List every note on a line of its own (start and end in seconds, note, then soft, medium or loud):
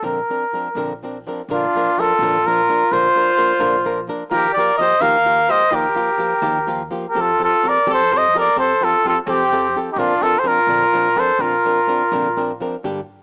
0.02 0.19 A#1 medium
0.02 0.18 A#2 medium
0.02 0.18 D3 medium
0.02 0.18 F3 medium
0.02 0.19 C4 medium
0.02 0.19 D4 medium
0.02 0.19 A#4 medium
0.02 0.99 A#4 medium
0.29 0.43 F3 soft
0.29 0.44 C4 medium
0.29 0.44 D4 medium
0.29 0.44 A#4 medium
0.53 0.67 F3 soft
0.53 0.67 C4 soft
0.53 0.67 D4 soft
0.53 0.68 A#4 medium
0.75 1.23 A#1 medium
0.75 0.92 A#2 medium
0.75 0.92 D3 medium
0.75 0.92 F3 medium
0.75 0.92 C4 medium
0.75 0.92 D4 medium
0.75 0.92 A#4 medium
1.03 1.17 F3 soft
1.03 1.17 C4 medium
1.03 1.17 D4 medium
1.03 1.18 A#4 medium
1.27 1.40 F3 medium
1.27 1.41 C4 soft
1.27 1.41 D4 medium
1.27 1.41 A#4 medium
1.48 1.65 A#1 medium
1.48 1.65 A#2 medium
1.48 1.65 D3 medium
1.48 1.65 F3 medium
1.48 1.65 A#3 medium
1.48 1.65 D4 medium
1.48 2.01 D4 medium
1.48 2.01 F4 medium
1.48 1.65 A#4 medium
1.75 1.89 F3 soft
1.75 1.89 A#3 soft
1.75 1.90 D4 medium
1.75 1.90 A#4 medium
1.98 2.12 F3 medium
1.98 2.12 A#3 medium
1.98 2.12 D4 medium
1.98 2.47 F4 medium
1.98 2.49 A4 medium
1.98 2.13 A#4 medium
2.19 2.66 A#1 medium
2.19 2.37 A#2 medium
2.19 2.37 D3 medium
2.19 2.37 F3 medium
2.19 2.37 A#3 medium
2.23 2.37 D4 medium
2.23 2.37 A#4 medium
2.47 2.60 F3 medium
2.47 2.60 A#3 medium
2.47 2.61 D4 medium
2.47 2.91 F4 medium
2.47 2.94 A#4 medium
2.47 2.61 A#4 medium
2.69 2.83 F3 soft
2.69 2.83 A#3 medium
2.69 2.83 D4 medium
2.69 2.83 A#4 medium
2.91 3.07 A#1 medium
2.91 3.06 A#2 medium
2.91 3.07 D3 medium
2.91 3.07 F3 medium
2.91 3.07 A#3 medium
2.91 3.07 D4 medium
2.91 4.08 F4 loud
2.91 3.07 A#4 medium
2.91 4.09 C5 medium
3.15 3.29 F3 medium
3.15 3.30 A#3 medium
3.15 3.30 D4 medium
3.15 3.30 A#4 medium
3.37 3.52 F3 medium
3.37 3.52 A#3 medium
3.37 3.52 D4 medium
3.37 3.52 A#4 medium
3.59 4.07 A#1 medium
3.59 3.76 A#2 medium
3.59 3.75 D3 medium
3.59 3.76 F3 medium
3.59 3.76 A#3 medium
3.59 3.76 D4 medium
3.59 3.76 A#4 medium
3.84 3.99 F3 medium
3.84 4.00 A#3 medium
3.84 4.00 D4 medium
3.84 4.00 A#4 medium
4.07 4.22 F3 medium
4.07 4.22 A#3 medium
4.07 4.23 D4 medium
4.07 4.23 A#4 medium
4.31 4.48 D#2 medium
4.31 4.46 D#3 medium
4.31 4.46 F3 medium
4.31 4.46 A#3 medium
4.31 4.46 F4 medium
4.31 4.55 G4 medium
4.31 4.47 G4 medium
4.31 4.53 A#4 medium
4.53 4.70 F3 medium
4.53 4.71 A#3 medium
4.53 4.76 D5 medium
4.58 4.71 F4 medium
4.58 4.71 G4 medium
4.58 4.78 A#4 medium
4.78 4.93 F3 medium
4.78 4.93 A#3 medium
4.78 4.93 F4 medium
4.78 4.94 G4 medium
4.78 5.03 C5 medium
4.78 5.03 D#5 medium
5.00 5.47 D#2 loud
5.00 5.16 D#3 medium
5.00 5.16 F3 medium
5.00 5.16 A#3 medium
5.00 5.16 F4 medium
5.00 5.16 G4 loud
5.00 5.51 A#4 loud
5.00 5.52 F5 loud
5.25 5.39 F3 medium
5.25 5.39 A#3 medium
5.25 5.40 F4 medium
5.25 5.40 G4 medium
5.48 5.62 F3 medium
5.48 5.62 A#3 medium
5.48 5.63 F4 medium
5.48 5.62 G4 medium
5.48 5.73 C5 loud
5.48 5.76 D#5 medium
5.71 5.87 D#2 medium
5.71 5.86 D#3 medium
5.71 5.86 F3 medium
5.71 5.86 A#3 medium
5.71 5.86 F4 medium
5.71 6.91 G4 medium
5.71 5.87 G4 medium
5.75 6.93 A#4 medium
5.95 6.09 F3 medium
5.95 6.10 A#3 medium
5.95 6.10 F4 medium
5.95 6.11 G4 medium
6.18 6.33 F3 medium
6.18 6.33 A#3 medium
6.18 6.33 F4 medium
6.18 6.34 G4 medium
6.42 6.89 D#2 loud
6.42 6.57 D#3 medium
6.42 6.58 F3 medium
6.42 6.58 A#3 medium
6.42 6.58 F4 medium
6.42 6.58 G4 medium
6.67 6.82 F3 medium
6.67 6.82 A#3 medium
6.67 6.82 F4 medium
6.67 6.82 G4 medium
6.91 7.05 F3 medium
6.91 7.05 A#3 medium
6.91 7.06 F4 medium
6.91 7.06 G4 medium
7.09 7.21 G4 soft
7.09 7.23 A#4 medium
7.15 7.31 F2 medium
7.15 7.30 F3 medium
7.15 7.30 C4 medium
7.15 7.30 G4 medium
7.15 7.31 A4 medium
7.19 7.42 F4 medium
7.19 7.43 A4 medium
7.39 7.54 F3 soft
7.39 7.54 C4 soft
7.39 7.68 F4 medium
7.39 7.54 G4 medium
7.39 7.54 A4 medium
7.45 7.70 A4 medium
7.63 7.77 F3 medium
7.63 7.77 C4 medium
7.63 7.78 G4 medium
7.63 7.78 A4 medium
7.63 7.88 A#4 medium
7.69 7.89 D5 medium
7.86 8.33 F2 medium
7.86 8.02 F3 medium
7.86 8.02 C4 medium
7.86 8.02 G4 medium
7.86 8.02 A4 medium
7.86 8.14 A4 loud
7.94 8.19 C5 medium
8.12 8.25 F3 medium
8.12 8.26 C4 medium
8.12 8.26 G4 medium
8.12 8.26 A4 medium
8.12 8.35 C5 medium
8.18 8.38 D#5 medium
8.35 8.48 F3 medium
8.35 8.49 C4 medium
8.35 8.49 G4 medium
8.35 8.49 A4 medium
8.35 8.56 A#4 medium
8.39 8.58 D5 medium
8.56 8.73 F2 medium
8.56 8.72 F3 medium
8.56 8.72 C4 medium
8.56 8.72 G4 medium
8.56 8.72 A4 medium
8.56 8.84 A4 medium
8.56 8.86 C5 medium
8.81 8.95 F3 medium
8.81 8.96 C4 medium
8.81 9.04 F4 medium
8.81 8.96 G4 medium
8.81 8.96 A4 medium
8.81 9.06 A4 medium
9.04 9.18 F3 medium
9.04 9.19 C4 medium
9.04 9.15 F4 medium
9.04 9.19 G4 medium
9.04 9.19 A4 medium
9.09 9.18 A4 medium
9.27 9.72 F2 loud
9.27 9.42 F3 medium
9.27 9.76 C4 medium
9.27 9.42 C4 medium
9.27 9.42 G4 medium
9.27 9.42 A4 medium
9.31 9.78 G4 medium
9.52 9.66 F3 medium
9.52 9.66 C4 medium
9.52 9.66 G4 medium
9.52 9.66 A4 medium
9.75 9.89 F3 soft
9.75 9.89 C4 medium
9.75 9.89 G4 medium
9.75 9.89 A4 medium
9.92 10.00 D#4 soft
9.92 10.00 G4 medium
9.96 10.13 A#1 loud
9.96 10.12 A#2 medium
9.96 10.12 D3 medium
9.96 10.13 F3 medium
9.96 10.13 C4 medium
9.96 10.25 D4 medium
9.96 10.13 D4 medium
9.96 10.24 F4 medium
9.96 10.13 A#4 medium
10.21 10.36 F3 medium
10.21 10.36 C4 medium
10.21 10.36 D4 medium
10.21 10.41 F4 medium
10.21 10.40 A4 medium
10.21 10.36 A#4 medium
10.39 10.47 A4 soft
10.39 10.49 C5 medium
10.44 10.58 F3 medium
10.44 10.59 C4 medium
10.44 10.59 D4 medium
10.44 11.19 F4 medium
10.44 10.59 A#4 medium
10.44 11.21 A#4 medium
10.67 11.14 A#1 medium
10.67 10.83 A#2 medium
10.67 10.83 D3 medium
10.67 10.84 F3 medium
10.67 10.84 C4 medium
10.67 10.84 D4 medium
10.67 10.84 A#4 medium
10.93 11.07 F3 medium
10.93 11.07 C4 medium
10.93 11.08 D4 medium
10.93 11.08 A#4 medium
11.15 11.30 F3 medium
11.15 11.30 C4 medium
11.15 11.31 D4 medium
11.15 11.42 A4 medium
11.15 11.31 A#4 medium
11.15 11.42 C5 medium
11.39 11.55 A#1 medium
11.39 11.54 A#2 medium
11.39 11.54 D3 medium
11.39 11.54 F3 medium
11.39 11.54 C4 medium
11.39 11.55 D4 medium
11.39 12.61 F4 medium
11.39 11.55 A#4 medium
11.39 12.61 A#4 medium
11.65 11.79 F3 medium
11.65 11.79 C4 medium
11.65 11.79 D4 medium
11.65 11.80 A#4 medium
11.87 12.02 F3 medium
11.87 12.02 C4 medium
11.87 12.02 D4 medium
11.87 12.03 A#4 medium
12.12 12.59 A#1 medium
12.12 12.27 A#2 medium
12.12 12.27 D3 medium
12.12 12.27 F3 medium
12.12 12.27 C4 medium
12.12 12.28 D4 medium
12.12 12.28 A#4 medium
12.37 12.51 F3 medium
12.37 12.51 C4 medium
12.37 12.51 D4 medium
12.37 12.52 A#4 medium
12.60 12.75 F3 medium
12.60 12.75 C4 medium
12.60 12.75 D4 medium
12.60 12.75 A#4 medium
12.83 13.01 G1 medium
12.83 12.99 G2 medium
12.83 13.00 D3 medium
12.83 13.00 G3 medium
12.83 13.00 A#3 medium
12.83 13.00 D4 medium
12.83 13.00 G4 medium